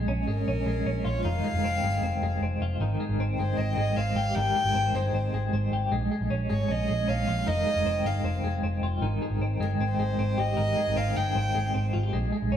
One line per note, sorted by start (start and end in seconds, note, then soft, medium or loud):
0.00 0.27 G#3 soft
0.08 0.24 A#1 medium
0.08 0.47 C#4 medium
0.27 0.43 G#1 medium
0.27 0.66 G#3 medium
0.27 1.07 A#4 medium
0.47 0.63 A#1 medium
0.47 0.85 C#4 medium
0.66 0.82 A#1 medium
0.66 1.44 G#3 soft
0.85 1.01 A#1 medium
0.85 1.29 C#4 medium
1.05 1.21 A#1 medium
1.05 1.28 F4 medium
1.05 1.25 C#5 medium
1.25 1.41 F1 medium
1.25 2.81 D#3 medium
1.25 2.38 F5 loud
1.44 1.83 G#3 soft
1.53 1.61 F1 medium
1.64 1.79 F1 medium
1.64 2.03 C4 medium
1.83 1.99 G1 medium
1.83 2.23 G#3 medium
2.02 2.18 F1 medium
2.02 2.42 C4 medium
2.22 2.38 F1 medium
2.22 3.00 G#3 soft
2.41 2.57 F1 medium
2.41 3.20 C4 medium
2.60 2.76 F1 medium
2.60 2.85 F4 medium
2.80 2.96 G#1 medium
2.80 4.35 D#3 medium
3.00 3.39 G#3 soft
3.09 3.17 G#1 medium
3.18 3.34 G#1 medium
3.18 3.57 C4 medium
3.38 3.54 G1 medium
3.38 3.77 G#3 medium
3.38 3.59 C5 medium
3.57 3.74 G#1 medium
3.57 3.96 C4 medium
3.57 3.76 D#5 medium
3.77 3.93 G#1 medium
3.77 4.55 G#3 soft
3.77 3.98 D#5 medium
3.96 4.12 G#1 medium
3.96 4.74 C4 medium
3.96 4.36 F5 medium
4.15 4.32 G#1 medium
4.15 5.72 G4 medium
4.35 4.52 G#1 medium
4.35 5.91 D#3 medium
4.35 4.97 G5 loud
4.55 4.94 G#3 soft
4.64 4.73 G#1 medium
4.74 4.90 G#1 medium
4.74 5.13 C4 medium
4.94 5.10 G1 medium
4.94 5.34 G#3 medium
4.94 5.33 C5 medium
5.13 5.29 G#1 medium
5.13 5.52 C4 medium
5.33 5.49 G#1 medium
5.33 5.92 G#3 medium
5.52 5.68 G#1 medium
5.52 5.96 C4 medium
5.71 5.88 G#1 medium
5.71 5.96 G4 medium
5.91 6.07 A#1 loud
5.91 6.11 G#3 medium
6.12 6.49 G#3 medium
6.21 6.29 A#1 medium
6.30 6.46 A#1 medium
6.30 6.67 C#4 medium
6.50 6.66 G#1 medium
6.50 6.88 G#3 medium
6.50 6.72 C#5 medium
6.68 6.85 A#1 medium
6.68 7.07 C#4 medium
6.68 7.10 D#5 medium
6.88 7.05 A#1 medium
6.88 7.66 G#3 soft
7.08 7.24 A#1 medium
7.08 7.51 C#4 medium
7.08 7.49 F5 medium
7.27 7.43 A#1 medium
7.27 7.51 F4 medium
7.47 7.63 F1 medium
7.47 9.02 D#3 medium
7.47 8.08 D#5 loud
7.66 8.05 G#3 medium
7.76 7.84 F1 medium
7.86 8.02 F1 medium
7.86 8.24 C4 medium
8.05 8.21 G1 medium
8.05 8.44 G#3 soft
8.05 8.45 F5 medium
8.24 8.40 F1 medium
8.24 8.63 C4 medium
8.43 8.59 F1 medium
8.43 9.21 G#3 medium
8.63 8.79 F1 medium
8.63 9.41 C4 medium
8.81 8.98 F1 medium
8.81 9.06 F4 medium
9.01 9.18 G#1 medium
9.01 10.55 D#3 medium
9.22 9.60 G#3 medium
9.30 9.39 G#1 medium
9.39 9.56 G#1 medium
9.39 9.79 C4 medium
9.60 9.76 G1 medium
9.60 9.99 G#3 medium
9.60 9.71 A#4 medium
9.79 9.95 G#1 medium
9.79 10.18 C4 medium
9.79 10.41 C5 medium
9.98 10.15 G#1 medium
9.98 10.76 G#3 medium
10.19 10.35 G#1 medium
10.19 10.95 C4 medium
10.38 10.54 G#1 medium
10.38 11.93 G4 medium
10.38 10.98 D#5 medium
10.57 10.74 G#1 medium
10.57 12.13 D#3 medium
10.77 11.16 G#3 medium
10.88 10.95 G#1 medium
10.96 11.13 G#1 medium
10.96 11.34 C4 medium
10.96 11.18 F5 medium
11.16 11.32 G1 medium
11.16 11.54 G#3 medium
11.16 11.94 G5 medium
11.35 11.51 G#1 medium
11.35 11.73 C4 medium
11.55 11.71 G#1 medium
11.55 12.13 G#3 soft
11.74 11.91 G#1 medium
11.74 12.17 C4 soft
11.93 12.10 G#1 medium
11.93 12.03 F4 medium
12.03 12.17 G4 soft
12.13 12.29 A#1 loud
12.13 12.32 G#3 medium
12.32 12.57 G#3 medium
12.42 12.50 A#1 medium
12.52 12.57 A#1 medium
12.52 12.57 C#4 medium